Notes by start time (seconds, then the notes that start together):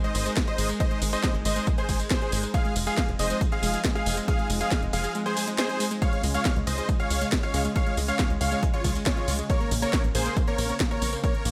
Already playing: G#3 D#4 A#4 C5
0.04 G#3 C5 D#5, closed hi-hat
0.15 G#1 G#3, open hi-hat, ride, tambourine
0.26 G#3, closed hi-hat, tambourine
0.37 G#3, kick, snare, closed hi-hat, tambourine
0.47 G#3 C5 D#5, closed hi-hat
0.58 G#1 G#3, open hi-hat, ride, tambourine
0.69 G#3, closed hi-hat, tambourine
0.80 C5 D#5, kick, closed hi-hat, tambourine
0.91 G#3, closed hi-hat
1.02 G#1 G#3, open hi-hat, ride, tambourine
1.13 G#3 C5 D#5, closed hi-hat, tambourine
1.24 G#3, kick, snare, closed hi-hat
1.34 G#1 G#3, closed hi-hat
1.45 G#1 G#3 C5 D#5, open hi-hat, ride, tambourine
1.56 G#3, closed hi-hat, tambourine
1.67 G#3, kick, closed hi-hat, tambourine
1.78 G#3 G#4 C5, closed hi-hat
1.89 G#1 G#3, kick, open hi-hat, ride, tambourine
2.00 G#3, closed hi-hat, tambourine
2.10 G#3 G#4 C5, kick, snare, closed hi-hat, tambourine
2.21 G#3, closed hi-hat
2.32 G#1 G#3, open hi-hat, ride, tambourine
2.43 G#3, closed hi-hat, tambourine
2.54 F3 G#3 C4 D#4 G#4 F5, kick, closed hi-hat, tambourine
2.65 G#3, closed hi-hat
2.76 F1 G#3, open hi-hat, ride, tambourine
2.87 G#3 G#4 F5, closed hi-hat, tambourine
2.97 G#3, kick, snare, closed hi-hat, tambourine
3.08 F1 G#3, closed hi-hat
3.19 F1 G#3 C5 D#5, open hi-hat, ride, tambourine
3.30 G#3, closed hi-hat, tambourine
3.41 G#3, kick, closed hi-hat, tambourine
3.52 G#3 G#4 F5, closed hi-hat
3.63 F1 G#3, open hi-hat, ride, tambourine
3.74 G#3, closed hi-hat, tambourine
3.85 G#3, kick, snare, closed hi-hat, tambourine
3.95 G#3 G#4 F5, closed hi-hat
4.06 F1 G#3, open hi-hat, ride, tambourine
4.17 G#3, closed hi-hat, tambourine
4.28 G#3 G#4 F5, kick, closed hi-hat, tambourine
4.39 G#3, closed hi-hat
4.50 F1 G#3, open hi-hat, ride, tambourine
4.61 G#3 G#4 F5, closed hi-hat, tambourine
4.71 kick, snare, closed hi-hat, tambourine
4.82 F1 G#3, closed hi-hat
4.93 F1 G#3 G#4 F5, open hi-hat, ride, tambourine
5.04 G#3, closed hi-hat, tambourine
5.15 G#3, closed hi-hat, tambourine
5.26 G#3 G#4 C5, closed hi-hat
5.37 G#3, open hi-hat, ride, tambourine
5.48 G#3, closed hi-hat, tambourine
5.58 G#3 G#4 C5, snare, closed hi-hat, tambourine
5.69 G#3, closed hi-hat
5.80 G#3, open hi-hat, ride, tambourine
5.91 G#3, closed hi-hat, tambourine
6.02 C#3 G#3 C#4 F4 G#4 C#5 F5, kick, closed hi-hat, tambourine
6.13 G#3, closed hi-hat
6.23 C#2 G#3, open hi-hat, ride, tambourine
6.34 G#3 C#5 F5, closed hi-hat, tambourine
6.45 G#3, kick, snare, closed hi-hat, tambourine
6.56 C#2 G#3, closed hi-hat
6.67 C#2 G#3 C5 D#5, open hi-hat, ride, tambourine
6.78 G#3, closed hi-hat, tambourine
6.89 G#3, kick, closed hi-hat, tambourine
7.00 G#3 C#5 F5, closed hi-hat
7.10 C#2 G#3, open hi-hat, ride, tambourine
7.21 G#3, closed hi-hat, tambourine
7.32 G#3, kick, snare, closed hi-hat, tambourine
7.43 G#3 C#5 F5, closed hi-hat
7.54 C#2 G#3, open hi-hat, ride, tambourine
7.65 G#3, closed hi-hat, tambourine
7.76 G#3 C#5 F5, kick, closed hi-hat, tambourine
7.86 G#3, closed hi-hat
7.97 C#2 G#3, open hi-hat, ride, tambourine
8.08 G#3 C#5 F5, closed hi-hat, tambourine
8.19 G#3, kick, snare, closed hi-hat, tambourine
8.30 C#2 G#3, closed hi-hat
8.41 C#2 G#3 C#5 F5, open hi-hat, ride, tambourine
8.52 G#3, closed hi-hat, tambourine
8.63 G#3, kick, closed hi-hat, tambourine
8.74 G#3 F4 C#5, closed hi-hat
8.84 C#2 G#3, kick, open hi-hat, ride, tambourine
8.95 G#3, closed hi-hat, tambourine
9.06 G#3 F4 C#5, kick, snare, closed hi-hat, tambourine
9.17 G#3, closed hi-hat
9.28 C#2 G#3, open hi-hat, ride, tambourine
9.39 G#3, closed hi-hat, tambourine
9.50 A#3 C4 A#4 C#5, kick, closed hi-hat, tambourine
9.60 A#3, closed hi-hat
9.71 A#1 A#3, open hi-hat, ride, tambourine
9.82 A#3 A#4 C#5, closed hi-hat, tambourine
9.93 A#3, kick, snare, closed hi-hat, tambourine
10.04 A#1 A#3, closed hi-hat
10.15 A#1 A#3 G#4 C5, open hi-hat, ride, tambourine
10.26 A#3, closed hi-hat, tambourine
10.37 A#3, kick, closed hi-hat, tambourine
10.47 A#3 A#4 C#5, closed hi-hat
10.58 A#1 A#3, open hi-hat, ride, tambourine
10.69 A#3, closed hi-hat, tambourine
10.80 A#3, kick, snare, closed hi-hat, tambourine
10.91 A#3 A#4 C#5, closed hi-hat
11.02 A#1 A#3, open hi-hat, ride, tambourine
11.13 A#3, closed hi-hat, tambourine
11.24 A#3 A#4 C#5, kick, closed hi-hat, tambourine
11.34 A#3, closed hi-hat
11.45 A#1 A#3, open hi-hat, ride, tambourine